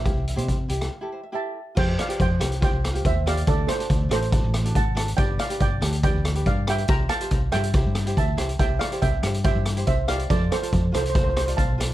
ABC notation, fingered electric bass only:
X:1
M:4/4
L:1/16
Q:1/4=141
K:F
V:1 name="Fingered electric bass" clef=bass
C,,3 C,3 C,,2 z8 | F,,2 z2 F,,2 C,,3 C,,3 _E,,4 | D,,2 z2 D,,2 A,,,3 A,,,3 _A,,,4 | G,,,2 z2 G,,,2 D,,3 D,,3 G,,4 |
C,,2 z2 C,,2 G,,2 C,, G,,3 D,,2 C,,2 | C,,2 z2 C,,2 G,,3 G,,3 C,,4 | F,,2 z2 F,,2 C,,3 C,,3 =B,,,4 |]